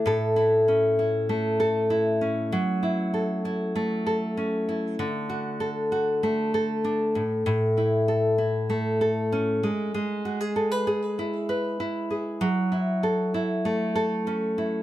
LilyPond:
\new Staff \with { instrumentName = "Nylon-string guitar" } { \time 4/4 \key a \major \tempo 4 = 97 <a, a'>8 e'8 cis'8 e'8 a8 a'8 e'8 cis'8 | fis8 e'8 a'8 e'8 a8 a'8 cis'8 e'8 | d8 fis'8 a'8 fis'8 a8 a'8 d'8 a,8 | a,8 e'8 a'8 e'8 a8 a'8 cis'8 gis8 |
gis8 fis'16 gis'16 a'16 b'16 gis'8 e'8 b'8 e'8 gis'8 | fis8 e'8 a'8 e'8 a8 a'8 cis'8 e'8 | }